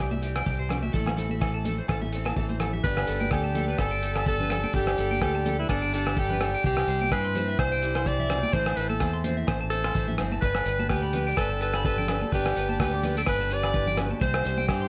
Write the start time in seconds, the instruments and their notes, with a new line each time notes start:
Already playing: steel-string acoustic guitar G3 C4 E4
0.00 fingered electric bass C2
0.11 clean electric guitar E5, high conga
0.22 steel-string acoustic guitar C4, clean electric guitar G4, closed hi-hat, maracas
0.36 clean electric guitar G5, cross-stick, low agogo
0.46 fingered electric bass C2, steel-string acoustic guitar C3, clean electric guitar G4, kick, maracas
0.59 clean electric guitar C5
0.69 steel-string acoustic guitar B2, clean electric guitar G4, cross-stick, closed hi-hat, low conga, low agogo, maracas
0.83 clean electric guitar E5, high conga
0.93 fingered electric bass A1, steel-string acoustic guitar A2 E4, clean electric guitar A4, kick, maracas
1.06 cross-stick, high conga, low agogo
1.17 steel-string acoustic guitar C4, clean electric guitar A4, closed hi-hat, low conga, maracas
1.29 clean electric guitar E5, high conga
1.41 steel-string acoustic guitar E3, clean electric guitar A4, kick, cross-stick, low agogo, maracas
1.54 clean electric guitar A5
1.65 steel-string acoustic guitar A3, clean electric guitar A4, closed hi-hat, high conga, low conga, maracas
1.78 clean electric guitar C5
1.88 fingered electric bass A1, steel-string acoustic guitar E2, clean electric guitar A4, kick, cross-stick, low agogo, maracas
2.01 clean electric guitar E5, high conga
2.12 steel-string acoustic guitar C4, clean electric guitar A4, closed hi-hat, maracas
2.25 clean electric guitar A5, cross-stick, high conga, low agogo
2.36 fingered electric bass A1, steel-string acoustic guitar E3 A3, clean electric guitar A4, kick, high conga, maracas
2.49 clean electric guitar C5, high conga
2.59 clean electric guitar A4, cross-stick, closed hi-hat, low conga, low agogo, maracas
2.73 clean electric guitar E5, low conga
2.84 fingered electric bass G1, steel-string acoustic guitar G2 D3 D4 G4, alto saxophone B4, tonewheel organ G5 A5 B5, muted clean electric guitar stroke, muted steel-string acoustic guitar stroke, kick, maracas
2.97 cross-stick, low agogo
3.07 fingered electric bass G1, steel-string acoustic guitar B3, clean electric guitar A4, closed hi-hat, maracas
3.20 clean electric guitar G5, high conga
3.31 fingered electric bass D2, steel-string acoustic guitar D3, alto saxophone G4, clean electric guitar A4, kick, cross-stick, low agogo, maracas
3.44 clean electric guitar A5
3.55 steel-string acoustic guitar D4, clean electric guitar A4, closed hi-hat, high conga, low conga, maracas
3.68 clean electric guitar B4
3.79 fingered electric bass G1, steel-string acoustic guitar G2, clean electric guitar A4, alto saxophone A4, kick, cross-stick, low agogo, maracas
3.91 clean electric guitar G5
4.02 steel-string acoustic guitar G4, clean electric guitar A4, closed hi-hat, maracas
4.16 clean electric guitar A5, cross-stick, low agogo
4.26 steel-string acoustic guitar D3 B3, clean electric guitar A4, alto saxophone A4, kick, maracas
4.40 clean electric guitar B4, low conga
4.50 steel-string acoustic guitar D4, clean electric guitar A4, cross-stick, closed hi-hat, low conga, low agogo, maracas
4.64 clean electric guitar G5, high conga
4.73 fingered electric bass G1, steel-string acoustic guitar G2 D4, alto saxophone G4, clean electric guitar A4, kick, maracas
4.87 cross-stick, low agogo
4.98 fingered electric bass G1, steel-string acoustic guitar B3, clean electric guitar A4, closed hi-hat, maracas
5.11 clean electric guitar G5, high conga
5.21 fingered electric bass D2, steel-string acoustic guitar D3, alto saxophone G4, clean electric guitar A4, kick, cross-stick, low agogo, maracas
5.35 clean electric guitar A5
5.45 steel-string acoustic guitar D4, clean electric guitar A4, closed hi-hat, high conga, low conga, maracas
5.59 alto saxophone E4, clean electric guitar B4
5.69 fingered electric bass G1, steel-string acoustic guitar G2, alto saxophone D4, clean electric guitar A4, kick, cross-stick, low agogo, maracas
5.82 clean electric guitar G5
5.93 alto saxophone D4, steel-string acoustic guitar G4, clean electric guitar A4, closed hi-hat, maracas
6.06 clean electric guitar A5, cross-stick, low agogo
6.17 steel-string acoustic guitar D3 B3, alto saxophone G4, clean electric guitar A4, kick, maracas
6.30 clean electric guitar B4, low conga
6.41 steel-string acoustic guitar D4, clean electric guitar A4, cross-stick, closed hi-hat, low conga, low agogo, maracas
6.54 clean electric guitar G5
6.64 fingered electric bass C2, steel-string acoustic guitar C3 C4, alto saxophone G4, clean electric guitar C5, tonewheel organ E5, kick, maracas
6.77 cross-stick, low agogo
6.88 fingered electric bass C2, steel-string acoustic guitar G3, clean electric guitar C5, closed hi-hat, maracas
7.02 clean electric guitar G5, high conga
7.12 fingered electric bass G2, steel-string acoustic guitar E3, alto saxophone B4, clean electric guitar C5, kick, cross-stick, low agogo, maracas
7.25 clean electric guitar C6
7.35 steel-string acoustic guitar C4, clean electric guitar C5, closed hi-hat, high conga, low conga, maracas
7.48 clean electric guitar E5
7.59 fingered electric bass C2, steel-string acoustic guitar G2, clean electric guitar C5, alto saxophone C5, kick, cross-stick, low agogo, maracas
7.72 clean electric guitar G5
7.82 steel-string acoustic guitar E4, clean electric guitar G4, closed hi-hat, maracas
7.95 clean electric guitar C6, cross-stick, low agogo
8.06 steel-string acoustic guitar C3, clean electric guitar C5, alto saxophone D5, kick, maracas
8.19 clean electric guitar E5, low conga
8.29 steel-string acoustic guitar B2, clean electric guitar C5, cross-stick, closed hi-hat, low conga, low agogo, maracas
8.43 clean electric guitar G5, high conga
8.53 fingered electric bass A1, steel-string acoustic guitar A2 C4, clean electric guitar C5, alto saxophone C5, tonewheel organ A5, kick, maracas
8.66 cross-stick, low agogo
8.76 fingered electric bass A1, steel-string acoustic guitar A3, alto saxophone B4, clean electric guitar C5, closed hi-hat, maracas
8.89 alto saxophone A4, clean electric guitar A5, high conga
9.00 fingered electric bass E2, steel-string acoustic guitar E3, clean electric guitar C5, kick, cross-stick, low agogo, maracas
9.13 clean electric guitar C6
9.24 steel-string acoustic guitar C4, clean electric guitar C5, closed hi-hat, high conga, low conga, maracas
9.37 clean electric guitar E5
9.47 fingered electric bass A1, steel-string acoustic guitar E2, clean electric guitar C5, kick, cross-stick, low agogo, maracas
9.61 clean electric guitar A5
9.70 steel-string acoustic guitar E4, alto saxophone A4, clean electric guitar C5, closed hi-hat, maracas
9.84 clean electric guitar C6, cross-stick, low agogo
9.94 fingered electric bass A1, steel-string acoustic guitar E3 A3, clean electric guitar C5, kick, maracas
10.08 clean electric guitar E5, high conga, low conga
10.18 fingered electric bass G1, steel-string acoustic guitar C4, clean electric guitar C5, cross-stick, closed hi-hat, low conga, low agogo, maracas
10.32 clean electric guitar A5, high conga
10.41 fingered electric bass G1, steel-string acoustic guitar D4, alto saxophone B4, clean electric guitar B4, tonewheel organ G5 B5, muted steel-string acoustic guitar stroke, kick, maracas
10.55 cross-stick, low agogo
10.66 fingered electric bass G1, steel-string acoustic guitar B3, clean electric guitar B4, closed hi-hat, maracas
10.79 clean electric guitar A5, high conga
10.89 fingered electric bass D2, steel-string acoustic guitar D3, alto saxophone G4, clean electric guitar B4, kick, cross-stick, low agogo, maracas
11.02 clean electric guitar B5
11.13 clean electric guitar B4, muted steel-string acoustic guitar stroke, closed hi-hat, high conga, low conga, maracas
11.27 steel-string acoustic guitar D4, clean electric guitar G5
11.37 fingered electric bass G1, steel-string acoustic guitar G2, alto saxophone A4, clean electric guitar B4, kick, cross-stick, low agogo, maracas
11.50 clean electric guitar A5
11.61 steel-string acoustic guitar G4, alto saxophone A4, clean electric guitar B4, closed hi-hat, maracas
11.74 clean electric guitar B5, cross-stick, low agogo
11.85 steel-string acoustic guitar D3, alto saxophone A4, clean electric guitar B4, muted steel-string acoustic guitar stroke, kick, maracas
11.97 clean electric guitar G5, low conga
12.08 steel-string acoustic guitar D4, clean electric guitar B4, cross-stick, closed hi-hat, low conga, low agogo, maracas
12.22 clean electric guitar A5, high conga
12.32 fingered electric bass G1, steel-string acoustic guitar G2 D4, alto saxophone G4, clean electric guitar B4, kick, maracas
12.45 cross-stick, low agogo
12.56 fingered electric bass G1, steel-string acoustic guitar B3, clean electric guitar B4, closed hi-hat, maracas
12.69 clean electric guitar A5, high conga
12.80 fingered electric bass D2, steel-string acoustic guitar D3, alto saxophone G4, clean electric guitar B4, kick, cross-stick, low agogo, maracas
12.93 clean electric guitar D6
13.03 steel-string acoustic guitar B3, clean electric guitar B4, closed hi-hat, high conga, low conga, maracas
13.17 steel-string acoustic guitar D4, alto saxophone A4, clean electric guitar G5
13.26 fingered electric bass G1, steel-string acoustic guitar G2, clean electric guitar B4, alto saxophone B4, kick, cross-stick, low agogo, maracas
13.41 clean electric guitar A5
13.50 steel-string acoustic guitar G4, clean electric guitar B4, alto saxophone D5, closed hi-hat, maracas
13.63 clean electric guitar B5, cross-stick, low agogo
13.74 steel-string acoustic guitar A2, clean electric guitar B4, kick, maracas
13.86 clean electric guitar G5, low conga
13.97 steel-string acoustic guitar B2, clean electric guitar B4, cross-stick, closed hi-hat, low conga, low agogo, maracas
14.10 clean electric guitar A5, high conga
14.21 fingered electric bass C2, steel-string acoustic guitar C3 C4, clean electric guitar C5, alto saxophone C5, tonewheel organ E5 C6, kick, maracas
14.34 cross-stick, low agogo
14.45 fingered electric bass C2, steel-string acoustic guitar G3, clean electric guitar C5, closed hi-hat, maracas
14.57 clean electric guitar G5, high conga
14.68 fingered electric bass G2, steel-string acoustic guitar E3, alto saxophone G4, clean electric guitar C5, kick, cross-stick, low agogo, maracas
14.82 clean electric guitar C6